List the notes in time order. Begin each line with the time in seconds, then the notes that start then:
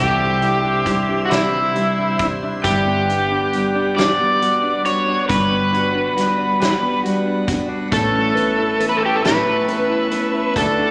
Already playing: C2 C3 E3 G3 D4 E4 G4 C5 E5 C6
0.00 E4
0.19 G3
0.40 G3 D4 E4, closed hi-hat
0.64 D4
0.86 E3 G3 D4 E4, kick, closed hi-hat
1.09 D4
1.25 F#4
1.30 C3 E3 G3 D4 E4, snare, closed hi-hat
1.54 G3
1.75 E3 G3 D4 E4, closed hi-hat
1.99 D4
2.19 G3 D4 E4, kick, closed hi-hat
2.43 D4
2.63 G1 G3 B3 D4 G4 B4 F#5, kick, closed hi-hat
2.87 B3
3.10 B3 D4, closed hi-hat
3.32 D4
3.53 G3 B3 D4, closed hi-hat
3.75 D4
3.96 G3 B3 D4 F#4 D5, snare, closed hi-hat
4.20 B3
4.40 G3 B3 D4 F#4, closed hi-hat
4.64 D4
4.84 B3 D4 F#4 C#5, closed hi-hat
5.08 D4
5.28 G1 G3 B3 D4 F#4 B4, kick, closed hi-hat
5.51 B3
5.72 B3 D4 F#4, closed hi-hat
5.95 D4
6.16 G3 B3 D4 F#4, snare, closed hi-hat
6.38 D4
6.60 G3 B3 D4 F#4, snare, closed hi-hat
6.82 B3
7.04 G3 B3 D4 F#4, closed hi-hat
7.26 D4
7.47 B3 D4 F#4, kick, closed hi-hat
7.69 D4
7.91 A1 A2 E3 A3 B3 C#4 E4 A4 B4 E5 A5 C#6, kick, closed hi-hat
8.14 C#4
8.35 B3 C#4 E4 B4, closed hi-hat
8.58 E4
8.80 E3 B3 C#4 E4 B4, closed hi-hat
8.89 B4
8.97 A4
9.02 E4 G4
9.16 A4
9.23 A2 E3 A3 B3 C#4 E4 B4, snare, closed hi-hat
9.46 C#4
9.67 E3 B3 C#4 E4 B4, closed hi-hat
9.90 E4
10.11 B3 C#4 E4 B4, closed hi-hat
10.34 E4
10.56 D2 D3 A3 D4 F#4 A4 D5 F#5 D6, kick, closed hi-hat
10.79 D4